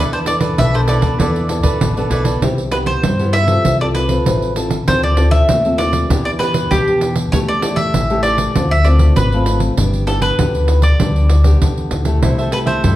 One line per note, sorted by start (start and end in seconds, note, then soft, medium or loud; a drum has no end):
0.00 0.49 E2 medium
0.00 0.55 E3 medium
0.00 0.22 B3 medium
0.00 0.22 D4 medium
0.00 0.11 E4 medium
0.00 0.11 A4 medium
0.00 0.22 A4 medium
0.00 0.12 B4 medium
0.00 0.11 D5 medium
0.12 0.25 A4 soft
0.12 0.26 B4 soft
0.12 0.18 C5 medium
0.12 0.26 D5 soft
0.12 pandeiro soft
0.26 0.68 B3 medium
0.26 0.68 D4 medium
0.26 0.69 A4 medium
0.26 0.36 D5 medium
0.26 muted cavaquinho stroke soft
0.26 pandeiro medium
0.40 0.72 A4 medium
0.40 0.71 B4 medium
0.40 0.71 D5 medium
0.40 pandeiro medium
0.58 0.98 B1 medium
0.58 1.17 B2 medium
0.58 0.74 E5 medium
0.58 pandeiro medium
0.74 1.15 B3 medium
0.74 1.15 D4 medium
0.74 1.16 A4 medium
0.74 0.87 A4 soft
0.74 0.87 B4 soft
0.74 0.80 C5 medium
0.74 0.88 D5 soft
0.74 pandeiro soft
0.87 1.02 E4 medium
0.87 1.02 A4 medium
0.87 1.01 B4 medium
0.87 1.77 D5 medium
0.87 1.00 D5 medium
0.87 pandeiro medium
1.01 1.16 E2 medium
1.01 1.18 A4 medium
1.01 1.17 B4 medium
1.01 1.17 D5 medium
1.01 pandeiro medium
1.19 1.59 E2 medium
1.19 1.78 E3 medium
1.19 1.38 B3 medium
1.19 1.38 D4 soft
1.19 1.47 E4 medium
1.19 1.48 A4 medium
1.19 1.38 A4 medium
1.19 1.48 B4 medium
1.19 1.48 D5 medium
1.19 pandeiro medium
1.36 pandeiro soft
1.49 1.91 B3 medium
1.49 1.91 D4 medium
1.49 1.92 A4 medium
1.49 muted cavaquinho stroke soft
1.49 pandeiro medium
1.63 1.78 E2 medium
1.63 1.95 A4 medium
1.63 1.94 B4 medium
1.63 1.94 D5 medium
1.63 pandeiro medium
1.81 2.09 A1 medium
1.81 2.40 B2 medium
1.81 pandeiro medium
1.96 2.38 B3 medium
1.96 2.38 D4 medium
1.96 2.10 A4 soft
1.96 2.38 A4 medium
1.96 2.10 B4 soft
1.96 2.11 D5 soft
1.96 pandeiro soft
2.10 2.39 B1 medium
2.10 2.25 E4 medium
2.10 2.25 A4 medium
2.10 2.24 B4 medium
2.10 2.23 D5 medium
2.10 pandeiro medium
2.24 2.41 A4 soft
2.24 2.40 B4 soft
2.24 2.40 D5 soft
2.24 pandeiro medium
2.42 2.94 C2 medium
2.42 3.01 C3 medium
2.42 2.61 B3 medium
2.42 2.61 E4 medium
2.42 2.61 G4 medium
2.42 pandeiro medium
2.58 pandeiro soft
2.71 3.14 B3 medium
2.71 3.14 E4 soft
2.71 3.14 G4 medium
2.71 2.77 B4 medium
2.71 pandeiro medium
2.86 3.35 C5 medium
2.86 pandeiro soft
3.03 3.56 G2 medium
3.03 3.62 G3 medium
3.03 pandeiro medium
3.19 3.45 B3 medium
3.19 3.45 E4 medium
3.19 3.45 G4 medium
3.19 pandeiro soft
3.33 3.77 E5 loud
3.33 pandeiro medium
3.48 3.75 C4 medium
3.48 3.75 F4 medium
3.48 3.75 A4 medium
3.48 pandeiro medium
3.65 4.17 C2 medium
3.65 4.23 C3 soft
3.65 pandeiro medium
3.81 4.06 C4 medium
3.81 4.06 F4 medium
3.81 4.07 A4 medium
3.81 3.86 D5 medium
3.81 pandeiro soft
3.95 4.52 B4 medium
3.95 pandeiro medium
4.09 4.51 C4 medium
4.09 4.51 F4 medium
4.09 4.51 A4 medium
4.09 pandeiro medium
4.26 4.78 A1 medium
4.26 4.84 C3 medium
4.26 pandeiro medium
4.42 pandeiro soft
4.56 4.76 C4 medium
4.56 4.76 F4 medium
4.56 4.77 A4 medium
4.56 pandeiro medium
4.70 pandeiro medium
4.87 5.40 D2 medium
4.87 5.46 D3 medium
4.87 5.13 C4 soft
4.87 5.14 F4 medium
4.87 5.14 A4 medium
4.87 5.03 C5 medium
4.87 pandeiro medium
5.03 5.31 D5 medium
5.03 pandeiro soft
5.17 5.59 C4 medium
5.17 5.59 F4 medium
5.17 5.59 A4 medium
5.17 pandeiro medium
5.31 5.78 E5 loud
5.31 pandeiro medium
5.49 6.01 D#2 medium
5.49 6.07 A3 medium
5.49 pandeiro medium
5.65 6.06 C4 medium
5.65 6.06 F4 medium
5.65 6.06 A4 medium
5.65 pandeiro soft
5.78 6.24 D5 loud
5.78 pandeiro medium
5.93 pandeiro medium
6.10 6.62 E2 medium
6.10 6.68 E3 medium
6.10 6.28 B3 medium
6.10 6.28 D4 medium
6.10 6.29 G4 medium
6.10 pandeiro medium
6.25 6.30 D5 medium
6.25 pandeiro soft
6.39 6.81 B3 medium
6.39 6.82 D4 medium
6.39 6.82 G4 medium
6.39 6.71 B4 medium
6.39 pandeiro medium
6.54 pandeiro medium
6.71 7.23 E2 medium
6.71 7.30 B2 medium
6.71 7.14 G4 medium
6.71 pandeiro medium
6.87 7.28 B3 medium
6.87 7.28 D4 medium
6.87 7.29 G4 medium
6.87 pandeiro soft
7.01 pandeiro medium
7.16 pandeiro medium
7.32 7.85 E2 medium
7.32 7.91 E3 medium
7.32 7.59 A3 medium
7.32 7.59 C#4 soft
7.32 7.59 G4 medium
7.32 7.37 C#5 loud
7.32 pandeiro medium
7.49 7.80 D5 medium
7.49 pandeiro soft
7.62 8.04 A3 soft
7.62 8.04 C#4 medium
7.62 8.04 G4 medium
7.62 pandeiro medium
7.76 8.20 E5 medium
7.76 pandeiro medium
7.94 8.46 A1 medium
7.94 8.52 E3 medium
7.94 pandeiro medium
8.10 8.51 A3 medium
8.10 8.51 C#4 medium
8.10 8.51 G4 medium
8.10 pandeiro soft
8.23 8.71 D5 medium
8.23 pandeiro medium
8.38 pandeiro medium
8.55 9.07 D2 medium
8.55 9.14 D3 medium
8.55 8.73 A3 medium
8.55 8.74 C4 medium
8.55 8.74 F4 medium
8.55 pandeiro medium
8.71 8.87 E5 medium
8.71 pandeiro soft
8.84 9.26 A3 medium
8.84 9.27 C4 medium
8.84 9.27 F4 medium
8.84 9.16 D5 medium
8.84 pandeiro medium
8.99 pandeiro medium
9.16 9.69 G#1 medium
9.16 9.59 B4 medium
9.16 pandeiro medium
9.32 9.74 A3 medium
9.32 9.74 C4 medium
9.32 9.74 F4 medium
9.32 pandeiro soft
9.46 pandeiro medium
9.60 pandeiro medium
9.77 10.30 G1 medium
9.77 10.36 G3 medium
9.77 10.04 B3 medium
9.77 10.04 D4 medium
9.77 10.04 G4 medium
9.77 pandeiro medium
9.93 pandeiro soft
10.07 10.34 B3 medium
10.07 10.34 D4 medium
10.07 10.34 G4 medium
10.07 10.22 A4 medium
10.07 pandeiro medium
10.22 10.83 B4 medium
10.22 pandeiro medium
10.39 10.91 D2 medium
10.39 10.97 D3 medium
10.39 10.79 B3 medium
10.39 10.79 D4 medium
10.39 10.79 G4 medium
10.39 pandeiro medium
10.55 pandeiro soft
10.68 pandeiro medium
10.82 11.57 D5 medium
10.82 pandeiro soft
11.00 11.52 D2 medium
11.00 11.59 G3 medium
11.00 11.29 B3 medium
11.00 11.30 D4 medium
11.00 11.30 G4 medium
11.00 pandeiro medium
11.16 pandeiro soft
11.29 pandeiro medium
11.44 12.02 B3 medium
11.44 12.02 D4 medium
11.44 12.02 G4 medium
11.44 pandeiro medium
11.62 11.89 E2 medium
11.62 12.20 D3 medium
11.62 pandeiro medium
11.78 pandeiro soft
11.91 12.19 D2 medium
11.91 pandeiro medium
12.05 12.48 A3 medium
12.05 12.48 E4 medium
12.05 12.48 G4 medium
12.05 pandeiro medium
12.22 12.75 C2 medium
12.22 12.81 C3 soft
12.22 12.37 E4 soft
12.22 12.37 A4 soft
12.22 12.37 C5 medium
12.22 12.37 E5 medium
12.22 pandeiro medium
12.38 12.51 A4 medium
12.38 12.52 C5 medium
12.38 12.52 E5 medium
12.38 pandeiro soft
12.52 12.94 A3 medium
12.52 12.94 E4 medium
12.52 12.95 G4 medium
12.52 12.58 B4 medium
12.52 muted cavaquinho stroke soft
12.52 pandeiro medium
12.66 12.82 A4 soft
12.66 12.82 C5 medium
12.66 12.96 C5 medium
12.66 12.81 E5 medium
12.66 pandeiro medium
12.84 12.96 G2 medium
12.84 12.96 G3 medium
12.84 12.96 E4 medium
12.84 12.96 A4 soft
12.84 12.96 C5 medium
12.84 12.96 E5 soft
12.84 pandeiro medium